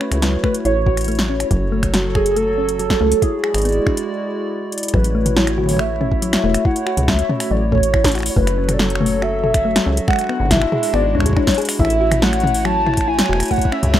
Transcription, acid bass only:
0.11 0.38 C#2 loud
0.65 1.45 A1 medium
1.51 2.95 F#1 loud
3.01 3.15 C#2 medium
3.54 3.80 G#1 loud
4.94 6.38 A1 loud
6.44 6.58 E1 medium
6.97 7.23 C#2 loud
7.51 8.30 A1 medium
8.36 9.81 F#1 loud
9.86 10.00 C#2 medium
10.40 10.66 G#1 loud
10.94 11.17 G#1 medium
11.15 11.29 C#2 medium
11.79 13.23 A1 loud
13.29 13.43 E1 medium
13.83 14.00 C#2 loud

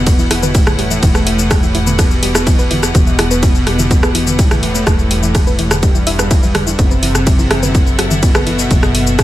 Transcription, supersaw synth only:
0.00 0.55 B2 loud
0.55 1.99 A2 loud
1.99 2.85 B2 loud
2.95 4.39 B2 loud
4.39 5.73 A2 loud
5.83 6.79 G2 loud
6.79 8.13 C3 loud
8.23 9.23 B2 loud

